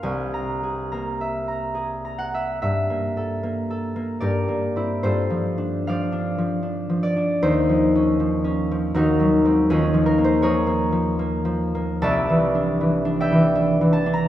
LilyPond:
<<
  \new Staff \with { instrumentName = "Harp" } { \time 3/4 \key c \mixolydian \tempo 4 = 77 << { \tuplet 3/2 { <bes' gis'' bes'' c'''>8 bes''8 gis'8 bes''8 e''8 bes''8 gis'8 bes''8 e''8 } | r2 <g' bes'>4 | <f' a'>4 <c'' d''>2 | r2 <ees' ges'>4 |
<des' f'>4 <aes' bes'>2 | <d'' e''>4. <d'' e''>4. | } \\ { r2 r8 ges''8 | e''2 d''4 | c''4 f''4. d''8 | c''2 bes'4 |
aes'8 bes'16 c''16 des''2 | a''4. g''4 a''16 bes''16 | } >> }
  \new Staff \with { instrumentName = "Harp" } { \time 3/4 \key c \mixolydian <c, bes>4 bes2 | \tuplet 3/2 { g,8 bes8 a'8 bes8 a'8 bes8 g,8 bes8 <c' e'>8 } | \tuplet 3/2 { g,8 f8 d'8 f8 d'8 f8 d'8 f8 d'8 } | \tuplet 3/2 { ees,8 f8 des'8 f8 des'8 f8 ees,8 ges8 <aes c'>8 } |
\tuplet 3/2 { ees,8 f8 bes8 f8 bes8 f8 bes8 f8 bes8 } | \tuplet 3/2 { c,8 e8 d'8 e8 d'8 e8 d'8 e8 d'8 } | }
>>